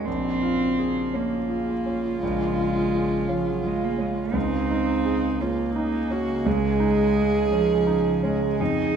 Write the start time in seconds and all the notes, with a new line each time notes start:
0.05 A#1 C#3 C4 G#4 F5
0.43 F4
0.79 G#4
1.13 A#3 C#4 F4
1.49 F4
1.86 C#4
2.23 A#1 G#3
2.58 F4
2.93 G#4
3.29 F3 C#4
3.47 F#3
3.63 G#3 F4
3.84 A#3
3.98 G#3 C#4
4.33 C#2 C#3 C4 D#4 G#4 D#5
4.71 D#4
5.05 G#4
5.41 A#3 C#4 F4
5.76 D#4
6.10 C#4 F#4
6.46 C#2 G#3 G#4
6.80 D#4
7.16 G#4
7.51 F3 C#4
7.87 D#4
8.23 G#3 C#4
8.60 F2 C4 D#4 G#4 F5